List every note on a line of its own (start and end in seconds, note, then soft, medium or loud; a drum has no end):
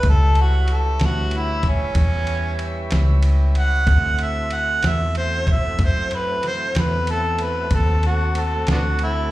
0.03 0.97 C#2 medium
0.03 3.84 G3 medium
0.03 3.84 C#4 medium
0.03 3.84 E4 medium
0.03 3.85 B4 medium
0.03 kick medium
0.03 ride medium
0.10 0.38 A4 loud
0.35 ride medium
0.41 0.74 F#4 medium
0.68 ride medium
0.73 1.02 A4 medium
1.00 1.93 D2 medium
1.00 snare medium
1.00 ride medium
1.06 1.39 F#4 medium
1.31 ride medium
1.38 1.71 E4 medium
1.63 kick medium
1.63 ride medium
1.69 2.91 C#4 loud
1.95 2.89 E2 medium
1.95 kick medium
1.95 ride medium
2.27 ride medium
2.59 ride medium
2.91 3.85 C#2 medium
2.91 snare loud
2.91 ride medium
3.23 ride medium
3.55 ride medium
3.59 4.24 F#5 loud
3.87 4.81 D2 medium
3.87 7.68 A3 medium
3.87 7.68 C4 medium
3.87 7.68 E4 medium
3.87 7.68 F#4 medium
3.87 kick loud
3.87 ride medium
4.19 4.55 E5 medium
4.19 ride medium
4.50 4.84 F#5 medium
4.50 ride medium
4.83 5.77 E2 medium
4.83 snare loud
4.83 ride medium
4.87 5.16 E5 loud
5.15 5.53 C5 medium
5.15 ride medium
5.47 kick medium
5.47 ride medium
5.52 5.81 E5 medium
5.79 6.72 F#2 medium
5.79 kick medium
5.79 ride medium
5.85 6.17 C5 medium
6.11 ride medium
6.16 6.45 B4 medium
6.43 snare soft
6.43 ride medium
6.47 6.80 C5 medium
6.75 7.69 E2 medium
6.75 7.08 B4 medium
6.75 snare loud
6.75 ride medium
7.07 7.44 A4 loud
7.07 ride medium
7.39 ride medium
7.43 7.72 B4 medium
7.71 8.64 D#2 medium
7.71 9.31 A3 medium
7.71 9.31 C4 medium
7.71 9.31 F#4 medium
7.71 9.31 A4 medium
7.71 kick loud
7.71 ride medium
7.75 8.04 A4 loud
8.03 8.41 F#4 medium
8.03 ride medium
8.35 8.68 A4 medium
8.35 ride medium
8.67 9.31 D2 medium
8.67 snare loud
8.67 ride medium
8.72 8.79 B3 medium
8.72 8.78 D4 medium
8.72 9.01 F#4 loud
8.99 ride medium
9.03 9.31 E4 medium